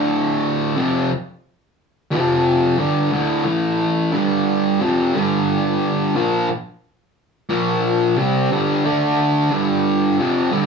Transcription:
distorted electric guitar
Already playing: D2 A2 D3
0.76 F2 C3 F3
2.11 F2 C3 F3
2.78 G2 D3 G3
3.12 D2 A2 D3
3.45 A2 E3 A3
4.12 G2 D3 G3
4.80 F2 C3 F3
5.14 G2 D3 G3
6.15 A#2 F3 A#3
7.49 A#2 F3 A#3
8.16 C3 G3 C4
8.51 G2 D3 G3
8.84 D3 A3 D4
9.51 G2 D3 G3
10.18 F2 C3 F3
10.51 G2 D3 G3

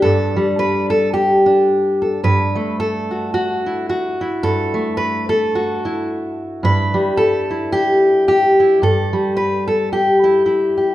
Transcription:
steel-string acoustic guitar
Already playing: G3 D4
0.02 G2 A4
0.36 G3
0.59 B4
0.90 A4
1.13 G4
1.46 D4
2.02 A4
2.24 G2 B4
2.55 A3
2.80 A4
3.11 F#4
3.34 F#4
3.66 E4
3.89 F#4
4.21 E4
4.43 G2 A4
4.74 A3
4.97 B4
5.29 A4
5.55 F#4
5.85 E4
6.63 G2 B4
6.94 G3
7.17 A4
7.50 E4
7.72 G4
8.28 G4
8.60 E4
8.82 G2 A4
9.13 G3
9.37 B4
9.68 A4
9.93 G4
10.24 E4
10.46 E4
10.77 G4

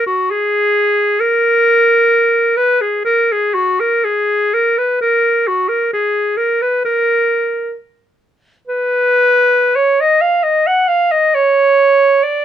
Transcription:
clarinet
0.07 F#4
0.31 G#4
1.20 A#4
2.57 B4
2.81 G#4
3.05 A#4
3.32 G#4
3.54 F#4
3.80 A#4
4.04 G#4
4.54 A#4
4.78 B4
5.01 A#4
5.48 F#4
5.69 A#4
5.93 G#4
6.37 A#4
6.62 B4
6.85 A#4
8.68 B4
9.76 C#5
10.01 D#5
10.21 F5
10.43 D#5
10.67 F#5
10.88 F5
11.12 D#5
11.35 C#5
12.23 D5

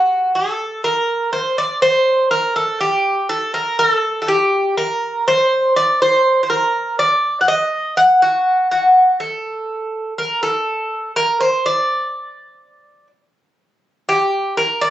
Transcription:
bouzouki
Already playing: F#4
0.35 A4
0.84 A#4
1.33 C5
1.58 D5
1.82 C5
2.31 A#4
2.56 A4
2.81 G4
3.29 A4
3.54 A#4
3.79 A4
4.22 A4
4.28 G4
4.77 A#4
5.28 C5
5.76 D5
6.02 C5
6.43 C5
6.50 A#4
6.99 D5
7.41 F#5
7.48 D#5
7.97 F#5
8.22 F#4
8.71 F#4
9.20 A4
10.18 A#4
10.43 A4
11.16 A#4
11.41 C5
11.66 D5
14.09 G4
14.57 A#4
14.81 D5

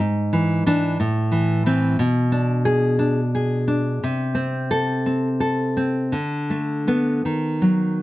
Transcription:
nylon-string guitar
0.00 G#2
0.33 E3
0.66 E3 D4
1.00 A2
1.32 E3
1.66 E3 C4
1.99 B2
2.32 D4
2.65 G#4
2.99 D4
3.35 G#4
3.68 D4
4.04 C3
4.35 C4
4.71 A4
5.06 C4
5.40 A4
5.77 C4
6.12 D3
6.50 A3
6.87 A3 B3
7.25 D#3
7.62 F#3

